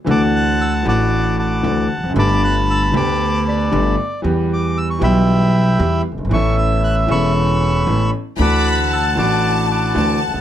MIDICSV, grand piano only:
0, 0, Header, 1, 2, 480
1, 0, Start_track
1, 0, Key_signature, 2, "major"
1, 0, Tempo, 520382
1, 64, Time_signature, 4, 2, 24, 8
1, 9601, End_track
2, 0, Start_track
2, 0, Title_t, "Grand piano"
2, 0, Program_c, 0, 0
2, 42, Note_on_c, 0, 52, 79
2, 53, Note_on_c, 0, 57, 71
2, 59, Note_on_c, 0, 38, 89
2, 61, Note_on_c, 0, 50, 92
2, 65, Note_on_c, 0, 62, 75
2, 75, Note_on_c, 0, 66, 86
2, 743, Note_off_c, 0, 52, 0
2, 749, Note_off_c, 0, 57, 0
2, 751, Note_off_c, 0, 38, 0
2, 753, Note_off_c, 0, 50, 0
2, 755, Note_off_c, 0, 62, 0
2, 760, Note_off_c, 0, 66, 0
2, 765, Note_on_c, 0, 52, 81
2, 780, Note_on_c, 0, 57, 68
2, 786, Note_on_c, 0, 33, 85
2, 787, Note_on_c, 0, 45, 100
2, 789, Note_on_c, 0, 62, 73
2, 802, Note_on_c, 0, 66, 78
2, 1464, Note_off_c, 0, 52, 0
2, 1472, Note_off_c, 0, 57, 0
2, 1474, Note_off_c, 0, 33, 0
2, 1475, Note_off_c, 0, 45, 0
2, 1476, Note_off_c, 0, 62, 0
2, 1483, Note_off_c, 0, 66, 0
2, 1501, Note_on_c, 0, 57, 69
2, 1505, Note_on_c, 0, 38, 79
2, 1505, Note_on_c, 0, 52, 70
2, 1506, Note_on_c, 0, 62, 59
2, 1508, Note_on_c, 0, 50, 77
2, 1510, Note_on_c, 0, 66, 72
2, 1708, Note_off_c, 0, 57, 0
2, 1710, Note_off_c, 0, 38, 0
2, 1710, Note_off_c, 0, 52, 0
2, 1711, Note_off_c, 0, 50, 0
2, 1711, Note_off_c, 0, 62, 0
2, 1713, Note_off_c, 0, 66, 0
2, 1811, Note_on_c, 0, 40, 52
2, 1871, Note_off_c, 0, 40, 0
2, 1878, Note_on_c, 0, 41, 61
2, 1932, Note_on_c, 0, 42, 77
2, 1935, Note_off_c, 0, 41, 0
2, 1974, Note_on_c, 0, 50, 83
2, 1985, Note_on_c, 0, 57, 68
2, 1991, Note_on_c, 0, 31, 92
2, 1992, Note_off_c, 0, 42, 0
2, 1992, Note_on_c, 0, 43, 86
2, 1996, Note_on_c, 0, 59, 73
2, 2008, Note_on_c, 0, 67, 84
2, 2666, Note_off_c, 0, 50, 0
2, 2672, Note_off_c, 0, 57, 0
2, 2675, Note_off_c, 0, 31, 0
2, 2675, Note_off_c, 0, 43, 0
2, 2678, Note_off_c, 0, 59, 0
2, 2684, Note_off_c, 0, 67, 0
2, 2693, Note_on_c, 0, 50, 78
2, 2702, Note_on_c, 0, 57, 72
2, 2707, Note_off_c, 0, 50, 0
2, 2710, Note_on_c, 0, 38, 104
2, 2712, Note_on_c, 0, 50, 98
2, 2718, Note_on_c, 0, 59, 73
2, 2730, Note_on_c, 0, 67, 96
2, 3390, Note_off_c, 0, 57, 0
2, 3394, Note_off_c, 0, 38, 0
2, 3395, Note_off_c, 0, 50, 0
2, 3398, Note_off_c, 0, 59, 0
2, 3404, Note_off_c, 0, 67, 0
2, 3427, Note_on_c, 0, 50, 66
2, 3428, Note_on_c, 0, 43, 86
2, 3430, Note_on_c, 0, 31, 93
2, 3431, Note_on_c, 0, 57, 73
2, 3432, Note_on_c, 0, 59, 65
2, 3434, Note_on_c, 0, 67, 83
2, 3630, Note_off_c, 0, 43, 0
2, 3630, Note_off_c, 0, 50, 0
2, 3632, Note_off_c, 0, 31, 0
2, 3632, Note_off_c, 0, 57, 0
2, 3632, Note_off_c, 0, 59, 0
2, 3633, Note_off_c, 0, 67, 0
2, 3892, Note_on_c, 0, 52, 92
2, 3905, Note_on_c, 0, 55, 78
2, 3909, Note_on_c, 0, 40, 90
2, 3917, Note_on_c, 0, 59, 69
2, 3926, Note_on_c, 0, 67, 90
2, 4586, Note_off_c, 0, 55, 0
2, 4588, Note_off_c, 0, 40, 0
2, 4588, Note_off_c, 0, 52, 0
2, 4592, Note_off_c, 0, 59, 0
2, 4597, Note_off_c, 0, 67, 0
2, 4602, Note_on_c, 0, 52, 86
2, 4616, Note_on_c, 0, 55, 82
2, 4621, Note_on_c, 0, 47, 87
2, 4622, Note_on_c, 0, 35, 96
2, 4628, Note_on_c, 0, 59, 73
2, 4638, Note_on_c, 0, 67, 87
2, 5292, Note_off_c, 0, 52, 0
2, 5299, Note_off_c, 0, 55, 0
2, 5302, Note_off_c, 0, 47, 0
2, 5303, Note_off_c, 0, 35, 0
2, 5305, Note_off_c, 0, 59, 0
2, 5310, Note_off_c, 0, 67, 0
2, 5336, Note_on_c, 0, 52, 93
2, 5340, Note_on_c, 0, 40, 82
2, 5341, Note_on_c, 0, 55, 74
2, 5342, Note_on_c, 0, 59, 72
2, 5342, Note_on_c, 0, 67, 81
2, 5540, Note_off_c, 0, 40, 0
2, 5540, Note_off_c, 0, 52, 0
2, 5540, Note_off_c, 0, 55, 0
2, 5541, Note_off_c, 0, 59, 0
2, 5541, Note_off_c, 0, 67, 0
2, 5642, Note_on_c, 0, 30, 51
2, 5699, Note_off_c, 0, 30, 0
2, 5704, Note_on_c, 0, 31, 59
2, 5760, Note_off_c, 0, 31, 0
2, 5763, Note_on_c, 0, 32, 65
2, 5804, Note_on_c, 0, 52, 86
2, 5817, Note_on_c, 0, 59, 67
2, 5820, Note_off_c, 0, 32, 0
2, 5825, Note_on_c, 0, 45, 91
2, 5826, Note_on_c, 0, 33, 91
2, 5831, Note_on_c, 0, 61, 69
2, 5845, Note_on_c, 0, 69, 89
2, 6492, Note_off_c, 0, 52, 0
2, 6499, Note_off_c, 0, 59, 0
2, 6503, Note_off_c, 0, 33, 0
2, 6503, Note_off_c, 0, 45, 0
2, 6506, Note_off_c, 0, 61, 0
2, 6513, Note_off_c, 0, 69, 0
2, 6521, Note_on_c, 0, 52, 87
2, 6533, Note_on_c, 0, 59, 70
2, 6538, Note_on_c, 0, 28, 88
2, 6540, Note_on_c, 0, 40, 89
2, 6542, Note_on_c, 0, 61, 75
2, 6557, Note_on_c, 0, 69, 81
2, 7213, Note_off_c, 0, 52, 0
2, 7219, Note_off_c, 0, 59, 0
2, 7221, Note_off_c, 0, 28, 0
2, 7222, Note_off_c, 0, 40, 0
2, 7224, Note_off_c, 0, 61, 0
2, 7231, Note_off_c, 0, 69, 0
2, 7254, Note_on_c, 0, 59, 60
2, 7256, Note_on_c, 0, 45, 77
2, 7257, Note_on_c, 0, 52, 68
2, 7258, Note_on_c, 0, 33, 86
2, 7260, Note_on_c, 0, 61, 64
2, 7260, Note_on_c, 0, 69, 78
2, 7458, Note_off_c, 0, 45, 0
2, 7458, Note_off_c, 0, 59, 0
2, 7459, Note_off_c, 0, 52, 0
2, 7460, Note_off_c, 0, 33, 0
2, 7461, Note_off_c, 0, 61, 0
2, 7461, Note_off_c, 0, 69, 0
2, 7715, Note_on_c, 0, 52, 80
2, 7730, Note_on_c, 0, 57, 75
2, 7737, Note_on_c, 0, 38, 92
2, 7738, Note_on_c, 0, 50, 83
2, 7743, Note_on_c, 0, 62, 70
2, 7757, Note_on_c, 0, 66, 90
2, 8414, Note_off_c, 0, 52, 0
2, 8421, Note_off_c, 0, 57, 0
2, 8425, Note_off_c, 0, 38, 0
2, 8425, Note_off_c, 0, 50, 0
2, 8428, Note_off_c, 0, 62, 0
2, 8435, Note_off_c, 0, 66, 0
2, 8441, Note_on_c, 0, 52, 79
2, 8451, Note_on_c, 0, 57, 63
2, 8457, Note_on_c, 0, 33, 89
2, 8459, Note_on_c, 0, 45, 92
2, 8466, Note_on_c, 0, 62, 72
2, 8474, Note_on_c, 0, 66, 84
2, 9136, Note_off_c, 0, 52, 0
2, 9141, Note_off_c, 0, 57, 0
2, 9144, Note_off_c, 0, 33, 0
2, 9145, Note_off_c, 0, 45, 0
2, 9149, Note_off_c, 0, 62, 0
2, 9153, Note_off_c, 0, 66, 0
2, 9176, Note_on_c, 0, 38, 93
2, 9176, Note_on_c, 0, 50, 92
2, 9176, Note_on_c, 0, 52, 74
2, 9178, Note_on_c, 0, 57, 63
2, 9178, Note_on_c, 0, 66, 76
2, 9182, Note_on_c, 0, 62, 74
2, 9380, Note_off_c, 0, 52, 0
2, 9381, Note_off_c, 0, 38, 0
2, 9381, Note_off_c, 0, 50, 0
2, 9381, Note_off_c, 0, 57, 0
2, 9381, Note_off_c, 0, 66, 0
2, 9383, Note_off_c, 0, 62, 0
2, 9474, Note_on_c, 0, 37, 52
2, 9535, Note_on_c, 0, 38, 62
2, 9538, Note_off_c, 0, 37, 0
2, 9598, Note_off_c, 0, 38, 0
2, 9601, End_track
0, 0, End_of_file